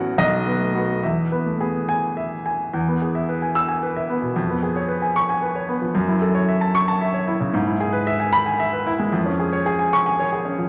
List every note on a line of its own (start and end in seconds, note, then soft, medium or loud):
0.00 0.16 A1 medium
0.00 0.20 B3 soft
0.00 0.21 C#4 medium
0.00 0.18 F#4 medium
0.00 0.21 C#5 medium
0.00 0.20 F#5 medium
0.18 1.01 B1 medium
0.18 0.63 D#5 loud
0.46 0.69 B3 soft
0.46 0.92 B4 medium
0.60 0.75 A3 soft
0.75 0.98 B3 soft
0.75 1.03 F#4 medium
1.03 2.71 E2 medium
1.03 1.49 E5 medium
1.32 1.55 B3 soft
1.32 1.78 B4 soft
1.46 1.61 A3 soft
1.60 1.83 B3 medium
1.60 2.06 G#4 medium
1.89 2.35 G#5 medium
2.17 2.63 E5 medium
2.46 2.74 G#5 medium
2.73 4.31 E2 medium
2.88 3.10 B3 medium
3.02 3.24 G#4 soft
3.15 3.37 E5 medium
3.29 3.50 B4 medium
3.42 3.64 G#5 medium
3.55 3.77 E6 medium
3.69 3.90 G#5 medium
3.83 4.04 B4 medium
3.96 4.17 E5 medium
4.09 4.31 B3 medium
4.22 4.36 B2 soft
4.36 5.91 F2 medium
4.50 4.71 B3 medium
4.63 4.84 G#4 medium
4.76 4.97 C#5 medium
4.88 5.10 B4 medium
5.02 5.23 G#5 medium
5.16 5.37 C#6 medium
5.29 5.50 G#5 medium
5.42 5.63 B4 medium
5.56 5.76 C#5 medium
5.69 5.89 B3 medium
5.82 5.95 F3 medium
5.95 7.51 F#2 medium
6.08 6.29 E4 medium
6.22 6.43 A4 medium
6.34 6.56 C#5 medium
6.49 6.70 E5 medium
6.61 6.83 A5 medium
6.75 6.96 C#6 loud
6.88 7.09 A5 medium
7.01 7.23 E5 medium
7.14 7.36 C#5 medium
7.27 7.49 E4 medium
7.40 7.54 C#3 medium
7.54 9.08 G#2 medium
7.67 7.88 E4 medium
7.80 8.02 G#4 medium
7.93 8.14 B4 medium
8.07 8.28 E5 medium
8.20 8.41 G#5 medium
8.33 8.54 B5 loud
8.46 8.67 G#5 medium
8.60 8.81 E5 medium
8.73 8.94 B4 medium
8.86 9.07 E4 medium
8.99 9.12 G#3 medium
9.12 10.67 F2 medium
9.26 9.47 C#4 medium
9.40 9.60 G#4 medium
9.53 9.74 C#5 medium
9.66 9.87 G#4 medium
9.79 10.00 G#5 medium
9.93 10.14 C#6 loud
10.06 10.27 G#5 medium
10.20 10.40 C#5 medium
10.32 10.53 G#4 medium
10.45 10.66 C#4 medium
10.59 10.69 F3 medium